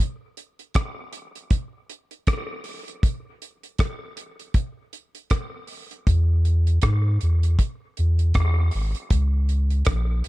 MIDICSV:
0, 0, Header, 1, 3, 480
1, 0, Start_track
1, 0, Tempo, 759494
1, 1912, Time_signature, 4, 2, 24, 8
1, 6498, End_track
2, 0, Start_track
2, 0, Title_t, "Sub bass"
2, 0, Program_c, 0, 38
2, 3838, Note_on_c, 0, 40, 113
2, 4290, Note_off_c, 0, 40, 0
2, 4321, Note_on_c, 0, 44, 89
2, 4540, Note_off_c, 0, 44, 0
2, 4567, Note_on_c, 0, 40, 86
2, 4783, Note_off_c, 0, 40, 0
2, 5047, Note_on_c, 0, 40, 78
2, 5263, Note_off_c, 0, 40, 0
2, 5281, Note_on_c, 0, 40, 104
2, 5500, Note_off_c, 0, 40, 0
2, 5527, Note_on_c, 0, 32, 94
2, 5652, Note_off_c, 0, 32, 0
2, 5761, Note_on_c, 0, 37, 90
2, 6211, Note_off_c, 0, 37, 0
2, 6241, Note_on_c, 0, 34, 104
2, 6460, Note_off_c, 0, 34, 0
2, 6498, End_track
3, 0, Start_track
3, 0, Title_t, "Drums"
3, 235, Note_on_c, 9, 42, 67
3, 298, Note_off_c, 9, 42, 0
3, 374, Note_on_c, 9, 42, 47
3, 437, Note_off_c, 9, 42, 0
3, 470, Note_on_c, 9, 42, 90
3, 476, Note_on_c, 9, 36, 124
3, 480, Note_on_c, 9, 37, 127
3, 533, Note_off_c, 9, 42, 0
3, 539, Note_off_c, 9, 36, 0
3, 543, Note_off_c, 9, 37, 0
3, 712, Note_on_c, 9, 42, 78
3, 775, Note_off_c, 9, 42, 0
3, 856, Note_on_c, 9, 42, 53
3, 919, Note_off_c, 9, 42, 0
3, 951, Note_on_c, 9, 42, 90
3, 953, Note_on_c, 9, 36, 106
3, 1014, Note_off_c, 9, 42, 0
3, 1016, Note_off_c, 9, 36, 0
3, 1198, Note_on_c, 9, 42, 70
3, 1261, Note_off_c, 9, 42, 0
3, 1333, Note_on_c, 9, 42, 49
3, 1397, Note_off_c, 9, 42, 0
3, 1434, Note_on_c, 9, 42, 82
3, 1437, Note_on_c, 9, 36, 111
3, 1441, Note_on_c, 9, 37, 100
3, 1497, Note_off_c, 9, 42, 0
3, 1500, Note_off_c, 9, 36, 0
3, 1504, Note_off_c, 9, 37, 0
3, 1668, Note_on_c, 9, 46, 68
3, 1731, Note_off_c, 9, 46, 0
3, 1819, Note_on_c, 9, 42, 62
3, 1883, Note_off_c, 9, 42, 0
3, 1915, Note_on_c, 9, 36, 122
3, 1918, Note_on_c, 9, 42, 90
3, 1979, Note_off_c, 9, 36, 0
3, 1982, Note_off_c, 9, 42, 0
3, 2160, Note_on_c, 9, 42, 56
3, 2223, Note_off_c, 9, 42, 0
3, 2297, Note_on_c, 9, 42, 45
3, 2360, Note_off_c, 9, 42, 0
3, 2392, Note_on_c, 9, 42, 86
3, 2396, Note_on_c, 9, 36, 119
3, 2402, Note_on_c, 9, 37, 115
3, 2455, Note_off_c, 9, 42, 0
3, 2460, Note_off_c, 9, 36, 0
3, 2466, Note_off_c, 9, 37, 0
3, 2635, Note_on_c, 9, 42, 72
3, 2698, Note_off_c, 9, 42, 0
3, 2778, Note_on_c, 9, 42, 55
3, 2841, Note_off_c, 9, 42, 0
3, 2870, Note_on_c, 9, 42, 95
3, 2872, Note_on_c, 9, 36, 107
3, 2934, Note_off_c, 9, 42, 0
3, 2935, Note_off_c, 9, 36, 0
3, 3115, Note_on_c, 9, 42, 67
3, 3178, Note_off_c, 9, 42, 0
3, 3253, Note_on_c, 9, 42, 50
3, 3316, Note_off_c, 9, 42, 0
3, 3350, Note_on_c, 9, 42, 88
3, 3355, Note_on_c, 9, 36, 110
3, 3357, Note_on_c, 9, 37, 104
3, 3413, Note_off_c, 9, 42, 0
3, 3419, Note_off_c, 9, 36, 0
3, 3420, Note_off_c, 9, 37, 0
3, 3586, Note_on_c, 9, 46, 62
3, 3649, Note_off_c, 9, 46, 0
3, 3735, Note_on_c, 9, 42, 63
3, 3799, Note_off_c, 9, 42, 0
3, 3835, Note_on_c, 9, 36, 112
3, 3836, Note_on_c, 9, 42, 96
3, 3898, Note_off_c, 9, 36, 0
3, 3900, Note_off_c, 9, 42, 0
3, 4077, Note_on_c, 9, 42, 62
3, 4140, Note_off_c, 9, 42, 0
3, 4215, Note_on_c, 9, 42, 51
3, 4278, Note_off_c, 9, 42, 0
3, 4308, Note_on_c, 9, 42, 92
3, 4316, Note_on_c, 9, 36, 116
3, 4318, Note_on_c, 9, 37, 127
3, 4371, Note_off_c, 9, 42, 0
3, 4379, Note_off_c, 9, 36, 0
3, 4381, Note_off_c, 9, 37, 0
3, 4555, Note_on_c, 9, 42, 67
3, 4618, Note_off_c, 9, 42, 0
3, 4697, Note_on_c, 9, 42, 61
3, 4761, Note_off_c, 9, 42, 0
3, 4795, Note_on_c, 9, 36, 97
3, 4795, Note_on_c, 9, 42, 90
3, 4858, Note_off_c, 9, 36, 0
3, 4858, Note_off_c, 9, 42, 0
3, 5037, Note_on_c, 9, 42, 65
3, 5101, Note_off_c, 9, 42, 0
3, 5175, Note_on_c, 9, 42, 47
3, 5239, Note_off_c, 9, 42, 0
3, 5272, Note_on_c, 9, 42, 79
3, 5277, Note_on_c, 9, 36, 111
3, 5279, Note_on_c, 9, 37, 90
3, 5335, Note_off_c, 9, 42, 0
3, 5341, Note_off_c, 9, 36, 0
3, 5343, Note_off_c, 9, 37, 0
3, 5507, Note_on_c, 9, 46, 65
3, 5570, Note_off_c, 9, 46, 0
3, 5654, Note_on_c, 9, 42, 62
3, 5718, Note_off_c, 9, 42, 0
3, 5753, Note_on_c, 9, 42, 92
3, 5755, Note_on_c, 9, 36, 109
3, 5816, Note_off_c, 9, 42, 0
3, 5818, Note_off_c, 9, 36, 0
3, 5996, Note_on_c, 9, 42, 58
3, 6060, Note_off_c, 9, 42, 0
3, 6133, Note_on_c, 9, 42, 51
3, 6196, Note_off_c, 9, 42, 0
3, 6225, Note_on_c, 9, 42, 94
3, 6235, Note_on_c, 9, 37, 125
3, 6236, Note_on_c, 9, 36, 116
3, 6288, Note_off_c, 9, 42, 0
3, 6298, Note_off_c, 9, 37, 0
3, 6300, Note_off_c, 9, 36, 0
3, 6472, Note_on_c, 9, 42, 74
3, 6498, Note_off_c, 9, 42, 0
3, 6498, End_track
0, 0, End_of_file